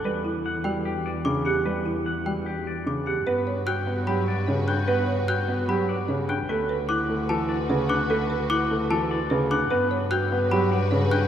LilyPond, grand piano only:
\new Staff \with { instrumentName = "Grand piano" } { \clef bass \time 4/4 \key e \dorian \tempo 4 = 149 g8 r4 g8 r4 cis8 r8 | g8 r4 g8 r4 cis8 r8 | \key g \lydian b8 r4 b8 fis8 r8 cis8 r8 | b8 r4 b8 fis8 r8 cis8 r8 |
a8 r4 a8 e8 r8 cis8 r8 | a8 r4 a8 e8 r8 cis8 r8 | b8 r4 b8 fis8 r8 cis8 r8 | }